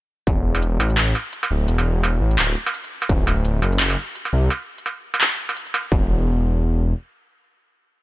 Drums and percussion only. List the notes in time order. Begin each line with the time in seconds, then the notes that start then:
0.27 kick, closed hi-hat
0.55 struck metal
0.62 closed hi-hat
0.80 struck metal
0.90 closed hi-hat
0.98 clap, closed hi-hat
1.15 struck metal
1.33 closed hi-hat
1.43 closed hi-hat, struck metal
1.68 closed hi-hat
1.78 struck metal
2.04 closed hi-hat, struck metal
2.31 closed hi-hat
2.39 clap, closed hi-hat, struck metal
2.66 struck metal
2.74 closed hi-hat
2.84 closed hi-hat
3.02 struck metal
3.09 kick, closed hi-hat
3.27 struck metal
3.45 closed hi-hat
3.62 struck metal
3.72 closed hi-hat
3.80 clap, closed hi-hat
3.90 struck metal
4.15 closed hi-hat
4.25 closed hi-hat, struck metal
4.50 closed hi-hat, struck metal
4.78 closed hi-hat
4.86 closed hi-hat, struck metal
5.14 closed hi-hat, struck metal
5.21 clap, closed hi-hat
5.49 struck metal
5.57 closed hi-hat
5.67 closed hi-hat
5.74 struck metal
5.92 kick